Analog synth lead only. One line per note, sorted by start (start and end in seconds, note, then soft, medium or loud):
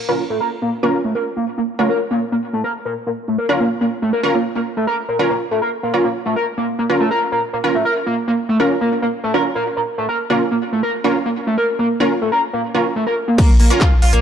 0.09 0.12 A#3 medium
0.30 0.38 A3 medium
0.40 0.48 A#4 medium
0.62 0.70 A#3 medium
0.83 0.86 A#3 medium
1.04 1.12 A3 medium
1.15 1.23 A#4 medium
1.36 1.44 A#3 medium
1.58 1.61 A#3 medium
1.79 1.87 A3 medium
1.89 1.97 A#4 medium
2.11 2.19 A#3 medium
2.32 2.35 A#3 medium
2.53 2.61 A3 medium
2.64 2.72 A#4 medium
2.85 2.93 A#3 medium
3.07 3.10 A#3 medium
3.28 3.36 A3 medium
3.38 3.46 A#4 medium
3.60 3.68 A#3 medium
3.81 3.84 A#3 medium
4.02 4.10 A3 medium
4.13 4.21 A#4 medium
4.34 4.42 A#3 medium
4.55 4.59 A#3 medium
4.77 4.84 A3 medium
4.87 4.95 A#4 medium
5.09 5.16 A#3 medium
5.30 5.33 A#3 medium
5.51 5.59 A3 medium
5.62 5.70 A#4 medium
5.83 5.91 A#3 medium
6.04 6.07 A#3 medium
6.26 6.33 A3 medium
6.36 6.44 A#4 medium
6.58 6.65 A#3 medium
6.79 6.82 A#3 medium
7.00 7.08 A3 medium
7.11 7.19 A#4 medium
7.32 7.40 A#3 medium
7.53 7.56 A#3 medium
7.75 7.82 A3 medium
7.85 7.93 A#4 medium
8.06 8.14 A#3 medium
8.28 8.31 A#3 medium
8.49 8.57 A3 medium
8.60 8.67 A#4 medium
8.81 8.89 A#3 medium
9.02 9.05 A#3 medium
9.24 9.31 A3 medium
9.34 9.42 A#4 medium
9.55 9.63 A#3 medium
9.77 9.80 A#3 medium
9.98 10.06 A3 medium
10.09 10.16 A#4 medium
10.30 10.38 A#3 medium
10.51 10.54 A#3 medium
10.72 10.80 A3 medium
10.83 10.91 A#4 medium
11.04 11.12 A#3 medium
11.26 11.29 A#3 medium
11.47 11.55 A3 medium
11.58 11.65 A#4 medium
11.79 11.87 A#3 medium
12.00 12.03 A#3 medium
12.21 12.29 A3 medium
12.32 12.40 A#4 medium
12.53 12.61 A#3 medium
12.75 12.78 A#3 medium
12.96 13.04 A3 medium
13.07 13.14 A#4 medium
13.28 13.36 A#3 medium
13.38 13.46 A#3 loud
13.60 13.65 A#3 medium
13.81 13.84 F4 loud
14.02 14.07 F4 medium
14.13 14.21 A#3 loud